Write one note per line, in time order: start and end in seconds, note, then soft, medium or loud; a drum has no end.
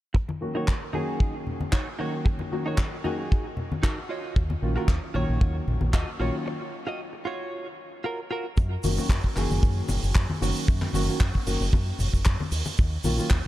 0.14 muted clean electric guitar stroke medium
0.14 kick medium
0.28 muted clean electric guitar stroke soft
0.28 high conga medium
0.41 0.52 D#3 medium
0.41 0.52 F#3 medium
0.41 0.52 A#3 medium
0.41 0.52 C#4 medium
0.41 0.52 F#4 medium
0.55 0.67 D#3 medium
0.55 0.67 F#3 medium
0.55 0.67 A#3 medium
0.55 0.67 C#4 medium
0.55 0.67 D#4 medium
0.55 0.67 F#4 medium
0.55 0.68 F#4 medium
0.55 0.68 C#5 medium
0.68 kick medium
0.68 clap loud
0.81 muted clean electric guitar stroke soft
0.93 1.96 D#3 medium
0.93 1.96 F#3 medium
0.93 1.96 A#3 medium
0.93 1.97 C#4 medium
0.93 1.34 D#4 medium
0.93 1.35 F#4 medium
0.93 1.35 G#4 medium
0.93 1.97 G#4 medium
0.93 high conga medium
1.20 kick loud
1.47 low conga medium
1.61 high conga medium
1.72 1.87 D#4 medium
1.72 1.87 F#4 medium
1.72 1.88 C#5 medium
1.72 kick medium
1.72 clap loud
1.99 2.49 D#3 medium
1.99 2.49 F#3 medium
1.99 2.49 A#3 medium
1.99 2.49 C#4 medium
1.99 2.13 D#4 loud
1.99 2.14 F#4 medium
1.99 2.49 F#4 medium
1.99 2.14 C#5 loud
2.25 muted clean electric guitar stroke loud
2.25 kick loud
2.39 muted clean electric guitar stroke soft
2.39 high conga medium
2.52 2.63 D#3 medium
2.52 2.63 F#3 medium
2.52 2.63 A#3 medium
2.52 2.63 C#4 medium
2.52 2.63 F#4 loud
2.65 2.77 D#3 medium
2.65 2.77 F#3 medium
2.65 2.78 A#3 medium
2.65 2.78 C#4 medium
2.65 2.78 D#4 medium
2.65 2.78 F#4 medium
2.65 2.79 F#4 medium
2.65 2.79 C#5 medium
2.78 kick medium
2.78 clap loud
2.92 muted clean electric guitar stroke soft
3.04 3.18 D#3 medium
3.04 3.18 F#3 medium
3.04 3.18 A#3 medium
3.04 3.18 C#4 medium
3.04 3.45 D#4 medium
3.04 3.45 F#4 medium
3.04 3.18 F#4 loud
3.04 3.46 G#4 medium
3.04 high conga medium
3.32 kick loud
3.57 low conga medium
3.72 high conga medium
3.83 3.97 D#4 medium
3.83 3.98 F#4 medium
3.83 3.98 A#4 medium
3.83 4.08 F#5 medium
3.83 kick medium
3.83 clap loud
4.09 4.41 F4 medium
4.09 4.42 F#4 medium
4.09 4.42 C#5 loud
4.09 4.34 D#5 medium
4.36 4.54 D#2 medium
4.36 kick loud
4.50 muted clean electric guitar stroke soft
4.50 high conga medium
4.62 4.76 A#1 medium
4.62 4.73 D#3 medium
4.62 4.73 F#3 medium
4.62 4.73 A#3 medium
4.62 4.73 C#4 medium
4.62 4.73 F4 medium
4.76 4.88 D#3 medium
4.76 4.88 F#3 medium
4.76 4.88 A#3 medium
4.76 4.88 C#4 medium
4.76 4.88 F4 medium
4.76 4.89 F4 medium
4.76 4.89 F#4 medium
4.76 4.89 A#4 medium
4.76 muted fingered electric bass stroke soft
4.88 4.97 D#2 medium
4.88 kick loud
4.88 clap loud
5.02 muted clean electric guitar stroke soft
5.14 5.24 A#1 medium
5.14 6.17 D#3 medium
5.14 6.17 F#3 medium
5.14 6.18 A#3 medium
5.14 6.18 C#4 medium
5.14 5.55 F4 medium
5.14 5.55 F#4 medium
5.14 5.56 C#5 medium
5.14 high conga medium
5.29 5.37 A#1 medium
5.41 5.59 D#2 medium
5.41 kick loud
5.67 5.77 A#1 medium
5.67 low conga medium
5.81 5.90 A#1 medium
5.81 high conga medium
5.93 6.03 D#2 medium
5.93 6.08 F4 medium
5.93 6.08 F#4 medium
5.93 6.09 D#5 medium
5.93 kick medium
5.93 clap loud
6.20 6.29 A#1 medium
6.20 6.47 D#3 medium
6.20 6.47 F#3 medium
6.20 6.47 A#3 medium
6.20 6.47 C#4 medium
6.20 6.34 F4 loud
6.20 6.47 F4 medium
6.20 6.35 F#4 loud
6.20 6.35 C#5 loud
6.46 muted clean electric guitar stroke loud
6.60 muted clean electric guitar stroke soft
6.87 6.99 F4 medium
6.87 7.00 F#4 medium
6.87 7.00 D#5 medium
7.13 muted clean electric guitar stroke soft
7.25 7.66 F4 medium
7.25 7.66 F#4 medium
7.25 7.67 C#5 medium
8.04 8.19 F4 medium
8.04 8.19 F#4 medium
8.04 8.19 A#4 medium
8.31 8.45 F4 loud
8.31 8.45 F#4 loud
8.31 8.46 A#4 loud
8.57 8.75 F#2 medium
8.57 kick loud
8.57 muted conga medium
8.57 shaker soft
8.83 8.97 F#1 medium
8.83 8.94 D#3 medium
8.83 8.94 F#3 medium
8.83 8.94 A#3 medium
8.83 8.94 C#4 medium
8.83 8.95 F#4 medium
8.83 open hi-hat loud
8.83 high conga medium
8.83 shaker medium
8.97 9.09 D#3 medium
8.97 9.09 F#3 medium
8.97 9.09 A#3 medium
8.97 9.09 C#4 medium
8.97 9.09 F#4 medium
8.97 muted fingered electric bass stroke soft
8.97 muted conga medium
8.97 shaker medium
9.09 9.19 F#2 medium
9.09 kick loud
9.09 clap loud
9.09 shaker soft
9.24 kick medium
9.35 9.45 F#1 medium
9.35 10.38 D#3 medium
9.35 10.38 F#3 medium
9.35 10.39 A#3 medium
9.35 10.39 C#4 medium
9.35 10.39 G#4 loud
9.35 clap soft
9.35 open hi-hat loud
9.35 shaker medium
9.50 9.58 F#1 medium
9.50 muted conga soft
9.50 high conga medium
9.50 shaker medium
9.63 9.80 F#2 medium
9.63 kick loud
9.63 shaker soft
9.88 9.98 F#1 medium
9.88 open hi-hat loud
9.88 muted conga medium
9.88 low conga medium
9.88 shaker medium
10.03 10.11 F#1 medium
10.03 shaker medium
10.15 10.24 F#2 medium
10.15 kick loud
10.15 clap loud
10.15 shaker soft
10.30 high conga medium
10.41 10.51 F#1 medium
10.41 10.91 D#3 medium
10.41 10.91 F#3 medium
10.41 10.91 A#3 medium
10.41 10.91 C#4 medium
10.41 10.91 F#4 medium
10.41 open hi-hat loud
10.41 muted conga medium
10.41 shaker medium
10.56 shaker medium
10.68 10.86 F#2 medium
10.68 kick loud
10.68 shaker soft
10.82 clap soft
10.82 muted conga medium
10.93 11.07 F#1 medium
10.93 11.05 D#3 loud
10.93 11.05 F#3 medium
10.93 11.05 A#3 medium
10.93 11.05 C#4 medium
10.93 11.05 F#4 loud
10.93 open hi-hat loud
10.93 high conga medium
10.93 shaker medium
11.08 11.20 D#3 medium
11.08 11.20 F#3 medium
11.08 11.20 A#3 medium
11.08 11.20 C#4 medium
11.08 11.20 F#4 medium
11.08 muted fingered electric bass stroke soft
11.08 shaker medium
11.20 11.29 F#2 medium
11.20 kick loud
11.20 clap loud
11.20 shaker soft
11.35 kick medium
11.35 open hi-hat medium
11.35 muted conga soft
11.46 11.56 F#1 medium
11.46 11.60 D#3 medium
11.46 11.60 F#3 medium
11.46 11.60 A#3 medium
11.46 11.60 C#4 medium
11.46 11.60 F#4 loud
11.46 open hi-hat loud
11.46 shaker medium
11.61 11.69 F#1 medium
11.61 high conga medium
11.61 shaker medium
11.73 11.91 F#2 medium
11.73 kick loud
11.73 muted conga medium
11.73 shaker soft
11.99 12.08 F#1 medium
11.99 open hi-hat loud
11.99 low conga medium
11.99 shaker medium
12.13 12.21 F#1 medium
12.13 kick medium
12.13 shaker medium
12.25 12.35 F#2 medium
12.25 kick loud
12.25 clap loud
12.25 muted conga soft
12.25 shaker medium
12.40 high conga medium
12.52 12.61 D#2 medium
12.52 open hi-hat loud
12.52 shaker medium
12.65 muted conga medium
12.65 shaker medium
12.78 12.96 D#2 medium
12.78 kick loud
12.78 shaker soft
13.04 13.18 A#1 medium
13.04 13.15 D#3 medium
13.04 13.15 F#3 medium
13.04 13.15 A#3 medium
13.04 13.16 C#4 medium
13.04 13.16 F4 medium
13.04 open hi-hat loud
13.04 high conga loud
13.04 shaker medium
13.18 13.30 D#3 medium
13.18 13.30 F#3 medium
13.18 13.30 A#3 medium
13.18 13.30 C#4 medium
13.18 13.31 F4 loud
13.18 muted fingered electric bass stroke soft
13.18 muted conga soft
13.18 shaker medium
13.30 13.40 D#2 medium
13.30 kick loud
13.30 clap loud
13.30 shaker soft